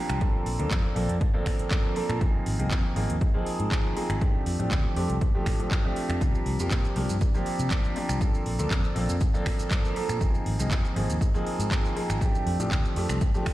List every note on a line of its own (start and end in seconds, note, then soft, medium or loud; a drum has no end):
0.00 0.18 F3 medium
0.00 0.18 A#3 medium
0.00 0.18 C4 medium
0.00 0.18 D4 medium
0.00 0.18 G4 medium
0.09 0.18 C2 medium
0.09 finger snap medium
0.09 closed hi-hat medium
0.21 0.56 F3 medium
0.21 0.56 A#3 medium
0.21 0.56 C4 medium
0.21 0.56 D4 medium
0.21 kick loud
0.21 closed hi-hat soft
0.46 0.56 A#1 medium
0.46 open hi-hat loud
0.59 0.68 D2 medium
0.59 0.93 F3 medium
0.59 0.93 A#3 medium
0.59 0.93 C4 medium
0.59 0.94 D4 medium
0.59 0.94 A4 medium
0.59 closed hi-hat medium
0.71 0.81 F2 medium
0.71 kick loud
0.71 clap loud
0.71 closed hi-hat medium
0.95 1.06 A#1 medium
0.95 1.14 F3 medium
0.95 1.14 A#3 medium
0.95 1.14 C4 medium
0.95 1.14 D4 medium
0.95 1.14 A4 medium
0.95 open hi-hat loud
1.09 1.18 F2 medium
1.09 closed hi-hat medium
1.21 kick loud
1.21 closed hi-hat soft
1.34 1.68 F3 medium
1.34 1.68 A#3 medium
1.34 1.68 C4 medium
1.34 1.68 D4 medium
1.34 1.68 A4 loud
1.46 finger snap medium
1.46 kick medium
1.46 open hi-hat loud
1.59 closed hi-hat medium
1.70 1.93 F3 medium
1.70 1.93 A#3 medium
1.70 1.93 C4 medium
1.70 1.93 D4 medium
1.70 1.93 A4 loud
1.70 kick loud
1.70 clap loud
1.70 closed hi-hat medium
1.96 2.18 F3 medium
1.96 2.18 A#3 medium
1.96 2.18 C4 medium
1.96 2.18 D4 medium
1.96 2.19 A4 medium
1.96 open hi-hat loud
2.09 2.18 A#2 medium
2.09 finger snap medium
2.09 closed hi-hat medium
2.20 2.31 G#1 loud
2.20 2.56 F3 medium
2.20 2.56 A#3 medium
2.20 2.56 C4 medium
2.20 2.56 D#4 medium
2.20 2.56 G#4 medium
2.20 kick loud
2.20 closed hi-hat soft
2.46 2.56 G#1 medium
2.46 open hi-hat loud
2.59 2.68 C2 medium
2.59 2.93 F3 medium
2.59 2.93 A#3 medium
2.59 2.93 C4 medium
2.59 2.93 D#4 medium
2.59 2.94 G#4 medium
2.59 closed hi-hat medium
2.71 2.81 F2 medium
2.71 kick loud
2.71 clap loud
2.71 closed hi-hat soft
2.96 3.06 G#1 medium
2.96 3.14 F3 medium
2.96 3.14 A#3 medium
2.96 3.15 C4 medium
2.96 3.15 D#4 medium
2.96 3.15 G#4 medium
2.96 open hi-hat loud
3.10 3.18 D#2 medium
3.10 closed hi-hat medium
3.21 kick loud
3.21 closed hi-hat soft
3.34 3.68 F3 medium
3.34 3.68 A#3 medium
3.34 3.68 C4 medium
3.34 3.68 D#4 medium
3.34 3.69 G#4 loud
3.46 open hi-hat loud
3.60 3.68 G#2 medium
3.60 closed hi-hat medium
3.71 3.93 F3 medium
3.71 3.93 A#3 medium
3.71 3.93 C4 medium
3.71 3.93 D#4 medium
3.71 3.94 G#4 loud
3.71 kick loud
3.71 clap loud
3.71 closed hi-hat soft
3.96 4.18 F3 medium
3.96 4.18 A#3 medium
3.96 4.18 C4 medium
3.96 4.19 D#4 medium
3.96 4.19 G#4 medium
3.96 open hi-hat loud
4.10 4.18 G#1 medium
4.10 finger snap medium
4.10 closed hi-hat medium
4.21 4.56 F3 medium
4.21 4.56 A3 medium
4.21 4.56 C4 medium
4.21 4.56 D4 medium
4.21 4.56 G4 medium
4.21 kick loud
4.21 closed hi-hat soft
4.46 4.56 F2 medium
4.46 open hi-hat loud
4.59 4.68 A2 medium
4.59 4.93 F3 medium
4.59 4.93 A3 medium
4.59 4.93 C4 medium
4.59 4.94 D4 medium
4.59 4.94 G4 medium
4.59 closed hi-hat medium
4.71 4.81 D2 medium
4.71 kick loud
4.71 clap loud
4.71 closed hi-hat soft
4.96 5.06 F2 medium
4.96 5.14 F3 medium
4.96 5.14 A3 medium
4.96 5.15 C4 medium
4.96 5.15 D4 medium
4.96 5.15 G4 medium
4.96 open hi-hat loud
5.10 5.18 C2 medium
5.10 closed hi-hat medium
5.21 kick loud
5.21 closed hi-hat soft
5.34 5.57 F3 medium
5.34 5.57 A3 medium
5.34 5.57 C4 medium
5.34 5.57 D4 medium
5.34 5.57 G4 loud
5.46 5.56 A2 medium
5.46 finger snap medium
5.46 kick medium
5.46 open hi-hat loud
5.59 5.81 F3 medium
5.59 5.81 A3 medium
5.59 5.81 C4 medium
5.59 5.82 D4 medium
5.59 5.82 G4 medium
5.59 closed hi-hat medium
5.71 kick loud
5.71 clap loud
5.71 closed hi-hat soft
5.85 6.19 F3 medium
5.85 6.19 A3 medium
5.85 6.19 C4 medium
5.85 6.19 D4 medium
5.85 6.19 G4 loud
5.96 open hi-hat loud
6.09 6.18 F2 medium
6.09 finger snap medium
6.09 closed hi-hat medium
6.21 6.31 C2 medium
6.21 6.56 F3 medium
6.21 6.56 A#3 medium
6.21 6.56 C4 medium
6.21 6.57 D4 medium
6.21 kick loud
6.21 closed hi-hat soft
6.21 shaker medium
6.35 shaker soft
6.46 6.56 C2 medium
6.46 open hi-hat loud
6.59 6.68 F2 medium
6.59 6.94 F3 medium
6.59 6.94 A#3 medium
6.59 6.94 C4 medium
6.59 6.94 D4 medium
6.59 6.94 G4 medium
6.59 closed hi-hat medium
6.59 shaker medium
6.71 6.81 A#2 medium
6.71 kick loud
6.71 clap loud
6.71 closed hi-hat soft
6.71 shaker medium
6.85 shaker soft
6.95 7.06 C2 medium
6.95 7.14 F3 medium
6.95 7.14 A#3 medium
6.95 7.14 C4 medium
6.95 7.15 D4 medium
6.95 7.15 G4 medium
6.95 open hi-hat loud
7.09 7.18 G2 medium
7.09 closed hi-hat medium
7.09 shaker medium
7.21 kick loud
7.21 closed hi-hat soft
7.21 shaker medium
7.34 7.68 F3 medium
7.34 7.69 A#3 medium
7.34 7.69 C4 medium
7.34 7.69 D4 medium
7.34 7.69 G4 loud
7.34 shaker soft
7.46 open hi-hat loud
7.59 7.68 C3 medium
7.59 closed hi-hat medium
7.59 shaker medium
7.71 7.93 F3 medium
7.71 7.93 A#3 medium
7.71 7.93 C4 medium
7.71 7.94 D4 medium
7.71 7.94 G4 medium
7.71 kick loud
7.71 clap loud
7.71 closed hi-hat soft
7.71 shaker medium
7.84 shaker soft
7.96 8.18 F3 medium
7.96 8.18 A#3 medium
7.96 8.18 C4 medium
7.96 8.19 D4 medium
7.96 8.19 G4 medium
7.96 open hi-hat loud
8.09 8.18 C2 medium
8.09 finger snap medium
8.09 closed hi-hat medium
8.09 shaker medium
8.21 8.56 F3 medium
8.21 8.56 A#3 medium
8.21 8.56 C4 medium
8.21 8.56 D4 medium
8.21 kick loud
8.21 closed hi-hat soft
8.21 shaker medium
8.35 shaker soft
8.46 8.56 A#1 medium
8.46 open hi-hat loud
8.59 8.68 D2 medium
8.59 8.93 F3 medium
8.59 8.93 A#3 medium
8.59 8.93 C4 medium
8.59 8.93 D4 medium
8.59 8.93 A4 medium
8.59 closed hi-hat medium
8.59 shaker medium
8.71 8.81 F2 medium
8.71 kick loud
8.71 clap loud
8.71 closed hi-hat soft
8.71 shaker medium
8.84 shaker soft
8.95 9.06 A#1 medium
8.95 9.14 F3 medium
8.95 9.14 A#3 medium
8.95 9.14 C4 medium
8.95 9.14 D4 medium
8.95 9.14 A4 medium
8.95 open hi-hat loud
9.09 9.18 F2 medium
9.09 closed hi-hat medium
9.09 shaker medium
9.21 kick loud
9.21 closed hi-hat medium
9.21 shaker medium
9.34 9.68 F3 medium
9.34 9.68 A#3 medium
9.34 9.68 C4 medium
9.34 9.68 D4 medium
9.34 9.69 A4 loud
9.34 shaker soft
9.46 finger snap medium
9.46 kick medium
9.46 open hi-hat loud
9.59 closed hi-hat medium
9.59 shaker medium
9.70 9.93 F3 medium
9.70 9.93 A#3 medium
9.70 9.93 C4 medium
9.70 9.93 D4 medium
9.70 9.93 A4 medium
9.70 kick loud
9.70 clap loud
9.70 closed hi-hat soft
9.70 shaker medium
9.85 shaker soft
9.95 10.18 F3 medium
9.95 10.18 A#3 medium
9.95 10.18 C4 medium
9.95 10.18 D4 medium
9.95 10.18 A4 medium
9.95 open hi-hat loud
10.09 10.18 A#2 medium
10.09 finger snap medium
10.09 closed hi-hat medium
10.09 shaker medium
10.21 10.31 G#1 loud
10.21 10.56 F3 medium
10.21 10.56 A#3 medium
10.21 10.56 C4 medium
10.21 10.56 D#4 medium
10.21 kick loud
10.21 closed hi-hat medium
10.21 shaker medium
10.35 shaker soft
10.46 10.56 G#1 medium
10.46 open hi-hat loud
10.59 10.68 C2 medium
10.59 10.93 F3 medium
10.59 10.93 A#3 medium
10.59 10.93 C4 medium
10.59 10.94 D#4 medium
10.59 10.94 G#4 medium
10.59 closed hi-hat medium
10.59 shaker medium
10.71 10.81 F2 medium
10.71 kick loud
10.71 clap loud
10.71 closed hi-hat medium
10.71 shaker medium
10.85 shaker soft
10.96 11.06 G#1 medium
10.96 11.14 F3 medium
10.96 11.14 A#3 medium
10.96 11.14 C4 medium
10.96 11.14 D#4 medium
10.96 11.15 G#4 medium
10.96 open hi-hat loud
11.09 11.18 D#2 medium
11.09 closed hi-hat medium
11.09 shaker medium
11.21 kick loud
11.21 closed hi-hat medium
11.21 shaker medium
11.34 11.68 F3 medium
11.34 11.68 A#3 medium
11.34 11.68 C4 medium
11.34 11.68 D#4 medium
11.34 11.69 G#4 loud
11.34 shaker soft
11.47 open hi-hat loud
11.59 11.68 G#2 medium
11.59 closed hi-hat medium
11.59 shaker medium
11.71 11.93 F3 medium
11.71 11.93 A#3 medium
11.71 11.93 C4 medium
11.71 11.93 D#4 medium
11.71 11.94 G#4 medium
11.71 kick loud
11.71 clap loud
11.71 closed hi-hat soft
11.71 shaker medium
11.85 shaker soft
11.95 12.18 F3 medium
11.95 12.18 A#3 medium
11.95 12.18 C4 medium
11.95 12.18 D#4 medium
11.95 12.19 G#4 medium
11.95 open hi-hat loud
12.10 12.18 G#1 medium
12.10 finger snap medium
12.10 closed hi-hat medium
12.10 shaker medium
12.21 12.56 F3 medium
12.21 12.56 A3 medium
12.21 12.56 C4 medium
12.21 12.57 D4 medium
12.21 12.57 G4 medium
12.21 kick loud
12.21 closed hi-hat medium
12.21 shaker medium
12.35 shaker soft
12.46 12.56 F2 medium
12.46 open hi-hat loud
12.59 12.68 A2 medium
12.59 12.93 F3 medium
12.59 12.93 A3 medium
12.59 12.94 C4 medium
12.59 12.94 D4 medium
12.59 12.94 G4 medium
12.59 closed hi-hat medium
12.59 shaker medium
12.71 12.81 D2 medium
12.71 kick loud
12.71 clap loud
12.71 closed hi-hat medium
12.71 shaker medium
12.85 shaker soft
12.96 13.06 F2 medium
12.96 13.15 F3 medium
12.96 13.15 A3 medium
12.96 13.15 C4 medium
12.96 13.15 D4 medium
12.96 13.15 G4 medium
12.96 open hi-hat loud
13.09 13.18 C2 medium
13.09 finger snap medium
13.09 closed hi-hat medium
13.09 shaker medium
13.21 kick loud
13.21 closed hi-hat medium
13.21 shaker medium
13.34 13.53 F3 medium
13.34 13.53 A3 medium
13.34 13.53 C4 medium
13.34 13.53 D4 medium
13.34 13.53 G4 loud
13.34 shaker soft
13.46 finger snap medium
13.46 kick medium
13.46 open hi-hat loud